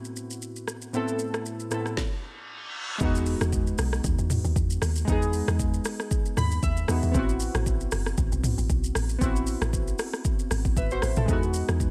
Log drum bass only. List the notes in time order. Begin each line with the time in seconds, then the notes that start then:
3.01 E2
3.41 E2
3.78 B1
4.04 D#2
4.19 E2
4.45 D#2
4.56 E2
4.82 D#2
5.08 E2
5.48 E2
6.37 D#2
6.63 D#2
6.89 E2
7.03 E2
7.15 A1
7.55 A1
7.92 F#1
8.18 A1
8.32 B1
8.58 A1
8.70 B1
8.95 A1
9.21 A1
9.61 A1
10.51 G#1
10.77 G#1
11.03 A1
11.17 A1
11.28 E2
11.69 E2